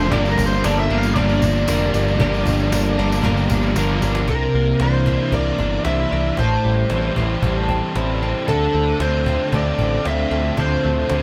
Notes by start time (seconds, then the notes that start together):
Already playing: F1 D3 F3 A3 C4 D4 F4 A4 C5
0.11 G1 G2 D3 F3 A#3 D4 G4 A#4 D5, cajon bass
0.15 G3
0.25 A#4, tambourine
0.38 G1, cajon bass, tambourine
0.46 C5
0.63 G1 G2 D3 F3 G3 A#3 D4 A4 A#4 D5, cajon slap, tambourine
0.80 E5
0.90 G1 G2 D3 F3 G3 A#3 D4 A#4
0.98 F5
1.03 tambourine
1.15 G1 G2 D3 F3 G3 A#3 D4 G4 A#4 D5, cajon bass, tambourine
1.29 tambourine
1.42 G1 D3 G3, cajon bass, tambourine
1.66 F1 G2 D3 F3 G3 A#3 D4 A#4, cajon slap, tambourine
1.93 G1 D3 G3 G4, tambourine
2.08 tambourine
2.18 G1 G2 D3 F3 G3 A#3 D4 G4 A#4, cajon bass, tambourine
2.34 tambourine
2.46 G1, cajon bass, tambourine
2.60 tambourine
2.70 G1 G2 D3 F3 G3 A#3 D4 A4 A#4, cajon slap, tambourine
2.98 G1 G2 D3 F3 G3 A#3 D4 A#4, tambourine
3.12 tambourine
3.22 G1 G2 D3 F3 G3 A#3 D4 G4 A#4, cajon bass, tambourine
3.37 tambourine
3.48 G1 D3 G3, cajon bass, tambourine
3.63 tambourine
3.74 G1 G2 D3 F3 G3 A#3 D4 A#4, cajon slap, tambourine
3.79 A#4
4.01 G1 D3 G3 G4, cajon slap, tambourine
4.15 cajon slap, tambourine
4.28 C2 C3 A#4, cajon bass
4.54 C2 A#3
4.80 C2 E3 D4 C5, cajon slap
5.06 D4 E4 G4, cajon bass
5.32 C2 A#3 A#4 D5, cajon bass
5.58 G1 E3 D4, cajon bass
5.85 C2 D4 E4 C5 E5, cajon slap
6.11 C2 E3 D4 A#4
6.37 A1 A2 A4 C5, cajon bass
6.64 A1 G3
6.90 A1 E3 C4 C5, cajon slap
7.16 A1 C4 E4 G4, cajon bass
7.42 A1 G3 A4, cajon bass
7.69 E3 C4, cajon bass
7.96 A1 C4 E4 C5, cajon slap
8.21 E3 C4 A4
8.48 D2 D3 A4, cajon bass
8.74 D2 A3
9.00 D2 D3 C4 C5, cajon slap
9.26 C4 F4 G4, cajon bass
9.52 D2 A3 A4 D5, cajon bass
9.79 A1 D3 C4, cajon bass
10.05 D2 C4 F4 C5 E5, cajon slap
10.31 D2 D3 C4 A4
10.45 cajon slap
10.57 D2 D3 A4 C5, cajon bass
10.83 D2 A3
11.09 D2 D3 C4 C5, cajon slap